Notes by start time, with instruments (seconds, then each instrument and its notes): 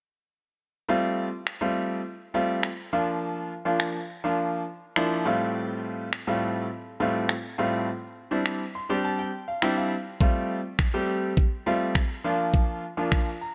0.89 grand piano G3 A3 C4 F4
1.47 finger snap
1.61 grand piano G3 A3 C4 F4
2.34 grand piano G3 A3 C4 F4
2.63 finger snap
2.93 grand piano F3 A#3 D4 F4
3.65 grand piano F3 A#3 D4 F4
3.80 finger snap
4.24 grand piano F3 A#3 D4 F4
4.96 grand piano F3 A#3 D4 E4 C6, finger snap
5.25 grand piano A2 G3 A3 C4 F4
6.13 finger snap
6.27 grand piano A2 G3 A3 C4 F4
7.00 grand piano A2 G3 A3 C4 F4
7.29 finger snap
7.58 grand piano A2 G3 A3 C4 F4
8.31 grand piano G3 C4 D4 E4
8.46 finger snap
8.75 grand piano C6
8.89 grand piano G3 C4 D4 G4
9.05 grand piano A5
9.19 grand piano G5
9.48 grand piano F5
9.62 grand piano G3 C4 D4 E4 G5, finger snap
9.77 grand piano F5
10.21 grand piano G3 A3 C4 F4, kick
10.79 finger snap, kick
10.94 grand piano G3 A3 C4 G4
11.37 kick
11.66 grand piano G3 A3 C4 F4
11.95 finger snap, kick
12.24 grand piano F3 A#3 D4 F4
12.54 kick
12.97 grand piano F3 A#3 D4 F4
13.12 finger snap, kick
13.41 grand piano A#5